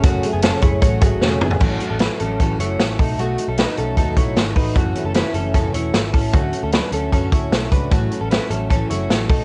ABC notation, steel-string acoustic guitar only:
X:1
M:4/4
L:1/8
Q:1/4=152
K:A
V:1 name="Steel-string acoustic guitar"
[F,,C,F,A,CG] [F,A,CG] [F,,C,F,A,CG] [F,A,CG] [F,A,CG] [F,A,CG] [F,,C,F,A,CG] [F,A,CG] | [A,,E,F,A,CF] [F,A,CF] [F,A,CF] [F,A,CF] [A,,E,F,A,CF] [F,A,CF] [F,A,CF] [A,^DF] | [B,,F,A,^DF] [A,DF] [F,A,DF] [A,DF] [B,,F,A,DF] [A,DF] [F,A,DF] [A,DF] | [F,,C,E,A,CF] [E,A,CF] [E,A,CF] [E,A,CF] [F,,C,E,A,CF] [E,A,CF] [E,A,CF] [E,A,CF] |
[D,F,A,CF] [A,CF] [F,A,CF] [A,CF] [D,F,A,CF] [A,CF] [F,A,CF] [A,CF] | [A,,E,F,A,CF] [F,A,CF] [F,A,CF] [F,A,CF] [A,,E,F,A,CF] [F,A,CF] [F,A,CF] [A,^DF] |]